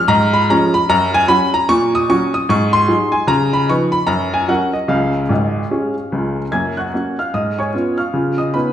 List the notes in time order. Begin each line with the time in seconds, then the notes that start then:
0.08 G#2 A#5
0.34 B5
0.49 F3 G#3 C#4 A#5
0.74 B5
0.89 F#2 A#5
1.14 G#5
1.28 F#3 C#4 F#4 B5
1.54 A#5
1.69 A#2 C#6
1.95 D#6
2.10 F#3 C#4 F#4 C#6
2.34 D#6
2.49 G#2 C#6
2.73 C6
2.88 F#3 D#4 G#4
3.12 G#5
3.27 C#3 A#5
3.53 B5
3.69 F3 D#4 B4 C#6
3.92 B5
4.07 F#2 A#5
4.34 G#5
4.48 F#3 C#4 A#4 F#5
4.73 D#5
4.88 C#2 C#3 F5
5.29 G#1 G#2
5.71 G#3 C#4 G#4
6.12 C#2 C#3
6.52 F#2 A#3 G#5 G#6
6.77 F#5 C#6 F#6
6.94 A#3 C#4 F#4
7.19 F5 F6
7.34 G#2 D#5 D#6
7.59 C#5 G#5 C#6
7.73 B3 C#4 F4
7.98 F5 C#6 F6
8.14 C#3 F4
8.38 D#5 D#6
8.54 B3 C#4 D#4 B4 B5